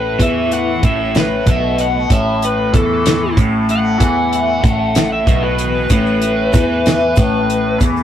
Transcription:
0.00 0.15 A1 medium
0.00 0.18 A2 loud
0.00 0.73 E3 medium
0.00 1.36 A3 medium
0.00 0.20 B4 medium
0.12 2.56 A2 medium
0.19 0.79 E2 medium
0.19 0.82 E3 loud
0.19 0.52 E5 medium
0.19 kick medium
0.19 closed hi-hat medium
0.52 0.83 F#5 medium
0.52 closed hi-hat medium
0.73 3.16 E3 medium
0.83 1.43 A1 loud
0.83 1.46 A2 medium
0.83 1.15 E5 medium
0.83 kick loud
0.83 closed hi-hat medium
1.15 1.47 B4 medium
1.15 snare loud
1.15 closed hi-hat medium
1.36 1.94 A3 medium
1.46 2.06 B1 medium
1.46 2.10 B2 medium
1.46 kick loud
1.46 closed hi-hat medium
1.50 1.79 E5 medium
1.78 2.11 F#5 medium
1.78 closed hi-hat medium
1.94 3.79 A3 medium
2.10 2.70 A1 loud
2.10 2.73 A2 loud
2.10 2.42 E5 medium
2.10 kick loud
2.10 closed hi-hat medium
2.42 2.74 B4 medium
2.42 closed hi-hat medium
2.56 5.02 A2 medium
2.73 3.33 E2 loud
2.73 3.36 E3 medium
2.73 3.35 A4 medium
2.73 kick loud
2.73 closed hi-hat medium
3.06 snare loud
3.06 closed hi-hat medium
3.17 5.62 E3 medium
3.37 3.97 A1 medium
3.37 3.99 A2 loud
3.37 kick loud
3.37 closed hi-hat medium
3.69 5.09 F#5 medium
3.69 closed hi-hat medium
3.79 4.39 A3 medium
3.99 4.60 E2 medium
3.99 4.63 E3 loud
3.99 kick medium
3.99 closed hi-hat medium
4.33 closed hi-hat medium
4.39 6.24 A3 medium
4.63 5.23 A1 medium
4.63 5.26 A2 medium
4.63 kick loud
4.63 closed hi-hat medium
4.95 snare loud
4.95 closed hi-hat medium
5.02 7.43 A2 medium
5.12 5.43 E5 medium
5.27 5.87 B1 medium
5.27 5.90 B2 loud
5.27 kick loud
5.27 closed hi-hat medium
5.44 5.90 B4 medium
5.58 closed hi-hat medium
5.63 8.03 E3 medium
5.90 6.50 A1 loud
5.90 6.53 A2 loud
5.90 7.78 B4 loud
5.90 kick medium
5.90 closed hi-hat medium
5.90 shaker medium
6.06 shaker soft
6.22 6.85 A3 medium
6.22 closed hi-hat medium
6.53 7.14 E2 loud
6.53 7.16 E3 loud
6.53 kick loud
6.53 closed hi-hat medium
6.53 shaker medium
6.85 8.03 A3 medium
6.85 snare loud
6.85 closed hi-hat medium
7.16 7.77 A1 loud
7.16 7.79 A2 loud
7.16 kick loud
7.16 closed hi-hat medium
7.16 shaker medium
7.43 8.03 A2 medium
7.50 closed hi-hat medium
7.80 8.03 E2 loud
7.80 8.03 E3 loud
7.80 kick loud
7.80 closed hi-hat medium
7.80 shaker medium
7.97 shaker soft

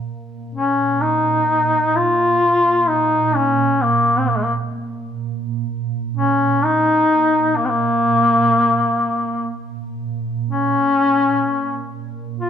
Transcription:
0.00 10.50 A#2 soft
0.55 1.03 C#4 medium
1.01 1.97 D#4 medium
1.96 2.89 F4 loud
2.88 3.37 D#4 medium
3.35 3.83 C#4 medium
3.81 4.20 A#3 medium
4.18 4.30 C4 medium
4.28 4.38 A#3 medium
4.36 4.45 G#3 medium
4.44 4.53 A#3 medium
6.17 6.66 C#4 medium
6.64 7.58 D#4 loud
7.57 7.67 A#3 medium
7.65 9.50 A#3 medium
7.65 7.71 C4 medium
10.50 12.50 A#2 soft
10.50 11.88 C#4 loud
12.40 12.50 F4 loud

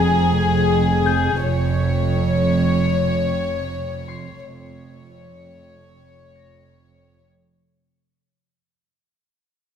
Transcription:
0.00 1.40 F1 soft
0.00 1.39 F2 soft
0.00 1.39 G#4 soft
0.00 1.02 G#5 soft
0.00 2.71 G#5 soft
0.00 0.27 A#5 soft
0.00 2.71 G#6 soft
1.06 3.31 G6 soft
1.43 4.41 F1 soft
1.43 4.41 F2 soft
1.43 4.41 C#5 soft
4.08 7.55 C6 soft
4.08 7.55 C7 soft
4.44 7.28 F1 soft
4.44 7.27 F2 soft
4.44 7.27 C#5 soft
6.35 7.55 A#6 soft

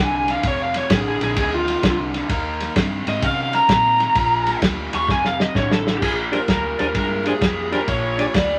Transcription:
0.00 0.34 C2 medium
0.00 0.25 F2 medium
0.00 0.25 D3 loud
0.00 0.13 G#5 loud
0.15 0.29 G#5 medium
0.28 0.42 F2 medium
0.28 0.42 D3 medium
0.28 0.45 F5 loud
0.28 snare soft
0.28 ride medium
0.43 0.81 F1 medium
0.43 0.87 F2 medium
0.43 0.88 C3 loud
0.43 kick medium
0.43 snare soft
0.43 ride medium
0.47 0.61 C#5 medium
0.62 0.76 F5 medium
0.74 0.91 C#5 medium
0.74 snare soft
0.74 ride medium
0.90 1.15 A1 medium
0.90 1.18 F2 medium
0.90 1.18 D3 medium
0.90 1.07 G#4 medium
0.90 kick medium
0.90 snare loud
0.90 ride medium
1.09 1.22 G#4 medium
1.21 1.33 A#1 medium
1.21 1.35 F2 medium
1.21 1.36 D3 medium
1.21 1.38 G#4 loud
1.21 snare soft
1.21 ride medium
1.36 1.74 D2 loud
1.36 1.80 F2 medium
1.36 1.81 D#3 loud
1.36 1.54 G#4 medium
1.36 kick medium
1.36 snare soft
1.36 ride medium
1.54 1.98 F4 medium
1.68 snare soft
1.68 ride medium
1.83 2.20 C2 medium
1.83 2.11 F2 medium
1.83 2.11 D3 medium
1.83 kick medium
1.83 snare loud
1.83 ride medium
2.14 2.28 F2 medium
2.14 2.28 D3 medium
2.14 snare soft
2.14 ride medium
2.29 2.66 D#2 medium
2.29 2.73 D#3 medium
2.29 2.73 A#3 medium
2.29 kick medium
2.29 snare soft
2.29 ride medium
2.60 snare soft
2.60 ride medium
2.76 3.01 G2 medium
2.76 3.04 D#3 medium
2.76 3.04 C4 loud
2.76 kick medium
2.76 snare loud
2.76 ride medium
3.07 3.19 G#2 medium
3.07 3.21 D#3 medium
3.07 3.22 C4 medium
3.07 3.25 D#5 loud
3.07 snare soft
3.07 ride medium
3.22 3.59 C3 medium
3.22 3.66 D#3 medium
3.22 3.66 C#4 medium
3.22 3.54 F5 medium
3.22 kick medium
3.22 snare soft
3.22 ride medium
3.53 3.69 A#5 medium
3.53 snare soft
3.53 ride medium
3.68 4.06 A#2 medium
3.68 3.97 D#3 medium
3.68 3.97 C4 loud
3.68 4.60 A#5 loud
3.68 kick medium
3.68 snare loud
3.68 ride medium
4.00 4.14 D#3 medium
4.00 4.14 C4 medium
4.00 snare soft
4.00 ride medium
4.15 4.52 A#1 medium
4.15 4.59 A#2 medium
4.15 4.59 F3 loud
4.15 kick medium
4.15 snare soft
4.15 ride medium
4.46 snare soft
4.46 ride medium
4.62 4.86 D2 medium
4.62 4.90 A#2 medium
4.62 4.90 G3 medium
4.62 kick medium
4.62 snare loud
4.62 ride medium
4.93 5.05 D#2 medium
4.93 5.07 A#2 medium
4.93 5.07 G3 medium
4.93 5.09 C#6 loud
4.93 snare soft
4.93 ride medium
5.08 5.45 F1 loud
5.08 5.52 F2 medium
5.08 5.52 C3 medium
5.08 5.25 G#5 medium
5.08 kick medium
5.08 snare medium
5.25 5.41 F5 medium
5.25 snare medium
5.40 5.55 D#5 medium
5.40 snare medium
5.55 6.02 A1 medium
5.55 5.83 F2 medium
5.55 5.83 D3 medium
5.55 5.71 C#5 medium
5.55 kick medium
5.55 snare medium
5.71 5.97 A4 loud
5.71 snare loud
5.86 6.00 F2 medium
5.86 6.00 D3 medium
5.86 snare medium
5.98 6.02 G4 medium
6.02 6.39 A#1 medium
6.02 6.45 A#2 medium
6.02 6.46 F3 medium
6.02 6.11 G#4 medium
6.02 kick medium
6.02 snare soft
6.02 crash loud
6.32 6.40 D4 medium
6.32 6.40 G4 medium
6.32 6.40 G#4 medium
6.32 6.49 A#4 medium
6.32 6.41 C5 medium
6.32 snare soft
6.32 ride medium
6.48 6.73 D2 medium
6.48 6.76 A#2 medium
6.48 6.76 G3 medium
6.48 6.80 A#4 medium
6.48 kick medium
6.48 snare loud
6.48 ride medium
6.79 6.92 D#2 medium
6.79 6.93 A#2 medium
6.79 6.93 G3 medium
6.79 6.87 D4 medium
6.79 6.87 G4 medium
6.79 6.87 G#4 medium
6.79 6.96 A#4 medium
6.79 6.87 C5 medium
6.79 snare soft
6.79 ride medium
6.95 7.32 G2 medium
6.95 7.38 A#2 medium
6.95 7.38 G#3 medium
6.95 7.25 A#4 medium
6.95 kick medium
6.95 snare soft
6.95 ride medium
7.26 7.34 D4 medium
7.26 7.34 G4 medium
7.26 7.34 G#4 medium
7.26 7.73 G#4 medium
7.26 7.34 C5 medium
7.26 snare soft
7.26 ride medium
7.41 7.78 F2 medium
7.41 7.69 A#2 medium
7.41 7.69 G3 medium
7.41 kick medium
7.41 snare loud
7.41 ride medium
7.72 7.86 A#2 medium
7.72 7.86 G3 medium
7.72 7.80 D4 medium
7.72 7.80 G4 medium
7.72 7.80 G#4 medium
7.72 7.88 A#4 medium
7.72 7.81 C5 medium
7.72 snare soft
7.72 ride medium
7.88 8.24 A#1 medium
7.88 8.31 A#2 medium
7.88 8.31 F3 medium
7.88 8.34 C#5 medium
7.88 kick medium
7.88 snare soft
7.88 ride medium
8.18 8.26 D4 medium
8.18 8.26 G4 medium
8.18 8.27 G#4 medium
8.18 8.27 D5 medium
8.18 snare soft
8.18 ride medium
8.34 8.59 D2 medium
8.34 8.59 A#2 medium
8.34 8.59 G3 medium
8.34 8.59 D5 medium
8.34 kick medium
8.34 snare loud
8.34 ride medium

